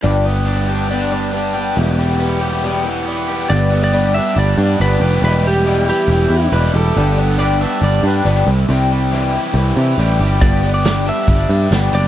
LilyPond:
<<
  \new Staff \with { instrumentName = "Lead electric guitar" } { \time 4/4 \key g \major \tempo 4 = 139 r1 | r1 | d''8. d''8. e''8 d''4 b'4 | b'8 g'4 g'4. r4 |
r1 | r1 | d''8. d''8. e''4. r8 d''8 | }
  \new Staff \with { instrumentName = "Pedal steel guitar" } { \time 4/4 \key g \major r1 | r1 | r1 | r2. b'8 a'8~ |
a'4 d''8 e''8 d''8 b'8 r4 | r1 | r1 | }
  \new Staff \with { instrumentName = "Overdriven electric guitar" } { \time 4/4 \key g \major g,8 b8 d'8 g'8 d'8 g8 d'8 g'8 | e,8 g8 b8 g'8 b8 e8 b8 g'8 | g,8 b8 g8 d'8 g8 d'8 b8 g'8 | e,8 g8 e8 e'8 e8 e'8 g8 g'8 |
g,8 b8 g8 d'8 g8 d'8 b8 c8 | c8 g8 e8 e'8 e8 e'8 g8 g'8 | g,8 b8 g8 d'8 g8 d'8 b8 g'8 | }
  \new Staff \with { instrumentName = "Twelve-string acoustic guitar" } { \time 4/4 \key g \major <g, d g b d' g'>8 <g b d' g'>8 <g b d' g'>8 <g b d' g'>8 <g, d g b d' g'>8 <g b d' g'>8 <g b d' g'>8 <g b d' g'>8 | <e, b, e g b g'>8 <e g b g'>8 <e g b g'>8 <e g b g'>8 <e, b, e g b g'>8 <e g b g'>8 <e g b g'>8 <e g b g'>8 | <g, d g b d' g'>8 <g b d' g'>8 <g, d g b d' g'>8 <g b d' g'>8 <g b d' g'>8 <g b d' g'>8 <g, d g b d' g'>8 <g b d' g'>8 | <e, b, e g e' g'>8 <e g e' g'>8 <e, b, e g e' g'>8 <e g e' g'>8 <e g e' g'>8 <e g e' g'>8 <e, b, e g e' g'>8 <e g e' g'>8 |
<g, d g b d' g'>8 <g b d' g'>8 <g, d g b d' g'>8 <g b d' g'>8 <g b d' g'>8 <g b d' g'>8 <g, d g b d' g'>8 <g e' g'>8 | <c e g e' g'>8 <g e' g'>8 <c e g e' g'>8 <g e' g'>8 <e g e' g'>8 <g e' g'>8 <c e g e' g'>8 <g e' g'>8 | <g, d g b d' g'>8 <g b d' g'>8 <g, d g b d' g'>8 <g b d' g'>8 <g b d' g'>8 <g b d' g'>8 <g, d g b d' g'>8 <g b d' g'>8 | }
  \new Staff \with { instrumentName = "Picked electric bass" } { \clef bass \time 4/4 \key g \major g,,1 | e,,1 | g,,2 g,,8 g,8 g,,8 f,,8 | e,,2 e,,8 e,8 e,,8 e,,8 |
g,,2 g,,8 g,8 g,,8 c,8 | c,2 c,8 c8 a,,8 g,,8 | g,,2 g,,8 g,8 g,,8 fis,,8 | }
  \new DrumStaff \with { instrumentName = "Drums" } \drummode { \time 4/4 r4 r4 r4 r4 | r4 r4 r4 r4 | r4 r4 r4 r4 | r4 r4 r4 r4 |
r4 r4 r4 r4 | r4 r4 r4 r4 | <hh bd>8 hh8 <hh sn>8 hh8 <hh bd>8 hh8 <hh sn>8 hh8 | }
>>